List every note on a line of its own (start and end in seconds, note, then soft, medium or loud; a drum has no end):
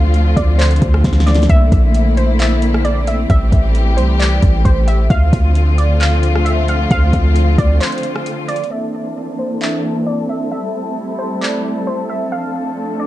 0.00 0.35 D2 loud
0.00 3.26 D3 medium
0.00 1.46 F3 medium
0.00 5.06 A3 medium
0.00 1.45 C4 medium
0.00 1.46 F4 medium
0.00 0.33 F5 loud
0.14 closed hi-hat medium
0.36 0.80 D2 loud
0.36 0.58 D5 medium
0.36 kick medium
0.36 closed hi-hat medium
0.59 1.23 C5 medium
0.59 clap loud
0.59 closed hi-hat medium
0.65 closed hi-hat medium
0.71 closed hi-hat medium
0.76 closed hi-hat medium
0.82 1.03 D2 loud
0.82 kick loud
0.82 closed hi-hat medium
0.94 cross-stick medium
1.04 1.48 D2 loud
1.04 kick medium
1.04 snare medium
1.04 closed hi-hat medium
1.13 snare medium
1.20 snare medium
1.27 1.48 D5 medium
1.27 snare medium
1.27 closed hi-hat medium
1.34 snare loud
1.34 closed hi-hat medium
1.42 snare loud
1.42 closed hi-hat soft
1.49 1.71 C2 loud
1.49 3.28 A#3 medium
1.49 5.07 C4 medium
1.49 3.28 E4 medium
1.49 2.13 E5 loud
1.49 kick loud
1.49 closed hi-hat medium
1.72 3.26 A#1 loud
1.72 kick loud
1.72 closed hi-hat medium
1.94 closed hi-hat medium
2.17 2.39 C5 medium
2.17 closed hi-hat medium
2.40 2.82 E5 medium
2.40 clap loud
2.40 closed hi-hat medium
2.62 closed hi-hat medium
2.74 cross-stick medium
2.85 3.06 D5 medium
2.85 closed hi-hat medium
3.07 3.29 E5 medium
3.07 closed hi-hat medium
3.30 3.51 A1 loud
3.30 5.08 E3 medium
3.30 5.08 G3 medium
3.30 5.08 G4 medium
3.30 3.93 E5 loud
3.30 kick loud
3.30 closed hi-hat medium
3.52 3.99 A1 loud
3.52 kick loud
3.52 closed hi-hat medium
3.75 closed hi-hat medium
3.97 4.40 C2 loud
3.97 4.19 C5 medium
3.97 closed hi-hat medium
4.19 4.62 D5 medium
4.19 clap loud
4.19 closed hi-hat medium
4.42 4.64 A1 loud
4.42 kick loud
4.42 closed hi-hat medium
4.65 5.08 A1 loud
4.65 4.87 C5 medium
4.65 kick loud
4.65 closed hi-hat medium
4.88 5.09 E5 medium
4.88 closed hi-hat medium
5.10 5.32 D2 loud
5.10 8.67 D3 medium
5.10 8.67 F3 medium
5.10 8.67 A3 medium
5.10 8.67 C4 medium
5.10 8.67 F4 medium
5.10 5.74 F5 loud
5.10 kick loud
5.10 closed hi-hat medium
5.33 6.87 D2 loud
5.33 kick loud
5.33 closed hi-hat medium
5.55 closed hi-hat medium
5.78 5.99 D5 medium
5.78 closed hi-hat medium
6.00 6.43 F5 medium
6.00 clap loud
6.00 closed hi-hat medium
6.23 closed hi-hat medium
6.35 cross-stick medium
6.45 6.67 E5 medium
6.45 closed hi-hat medium
6.68 6.90 F5 medium
6.68 closed hi-hat medium
6.91 7.12 D2 loud
6.91 7.55 F5 loud
6.91 kick loud
6.91 closed hi-hat medium
7.13 7.57 D2 loud
7.13 kick loud
7.13 closed hi-hat medium
7.36 closed hi-hat medium
7.58 7.80 D2 loud
7.58 7.80 D5 medium
7.58 kick loud
7.58 closed hi-hat medium
7.81 8.44 C5 medium
7.81 clap loud
7.81 closed hi-hat medium
7.87 closed hi-hat medium
7.92 closed hi-hat medium
7.98 closed hi-hat medium
8.03 closed hi-hat medium
8.16 cross-stick medium
8.26 closed hi-hat medium
8.48 8.70 D5 medium
8.48 closed hi-hat medium
8.56 closed hi-hat medium
8.64 closed hi-hat soft
8.71 10.50 E3 medium
8.71 10.50 A#3 medium
8.71 13.07 C4 medium
8.71 10.50 D4 medium
8.71 13.07 A4 medium
8.71 9.35 E5 loud
9.39 9.60 C5 medium
9.61 10.04 E5 medium
9.61 clap loud
10.07 10.28 D5 medium
10.29 10.50 E5 medium
10.52 12.30 G3 medium
10.52 12.30 A3 medium
10.52 12.30 E4 medium
10.52 11.15 E5 loud
11.19 11.40 C5 medium
11.41 11.84 D5 medium
11.41 clap loud
11.87 12.08 C5 medium
12.09 12.31 E5 medium
12.32 13.07 F3 medium
12.32 13.07 A3 medium
12.32 13.07 D4 medium
12.32 12.96 F5 loud
13.00 13.07 D5 medium